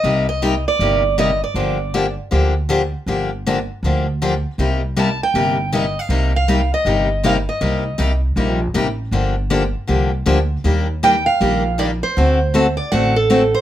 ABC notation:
X:1
M:4/4
L:1/16
Q:"Swing" 1/4=158
K:Gm
V:1 name="Steel-string acoustic guitar"
e2 e4 d6 e2 d2- | d6 z8 z2 | z16 | z4 a2 g6 e2 f2- |
f2 f4 e6 f2 e2- | e6 z8 z2 | z16 | z4 g2 f6 d2 c2- |
c6 d2 ^f2 A4 c2 |]
V:2 name="Steel-string acoustic guitar"
[C,G,B,EG]2 z2 [C,G,B,EG] z3 [C,G,B,EG]2 z2 [C,G,B,EG] z3 | [D,F,B,DG]2 z2 [D,F,B,DG] z3 [D,F,B,DG]2 z2 [D,F,B,DG] z3 | [D,F,B,DG]2 z2 [D,F,B,DG] z3 [D,F,B,DG]2 z2 [D,F,B,DG] z3 | [C,G,B,EG]2 z2 [C,G,B,EG] z3 [C,G,B,EG]2 z2 [C,G,B,EG] z3 |
[C,G,B,EG]2 z2 [C,G,B,EG] z3 [C,G,B,EG]2 z2 [C,G,B,EG] z3 | [C,G,B,EG]2 z2 [C,G,B,EG] z3 [C,G,B,EG]2 z2 [C,G,B,EG] z3 | [D,F,B,DG]2 z2 [D,F,B,DG] z3 [D,F,B,DG]2 z2 [D,F,B,DG] z3 | [E,G,B,DG]2 z2 [E,G,B,DG] z3 [E,G,B,DG]2 z2 [E,G,B,DG] z3 |
[D,A,C^FA]2 z2 [D,A,CFA] z3 [D,A,CFA]2 z2 [D,A,CFA] z3 |]
V:3 name="Upright bass" clef=bass
C,,8 G,,,8 | G,,,8 D,,8 | G,,,8 D,,8 | C,,8 G,,,8 |
C,,8 G,,,8 | C,,4 C,,4 B,,,4 A,,,4 | G,,,8 C,,4 D,,4 | E,,8 B,,,8 |
D,,8 A,,,8 |]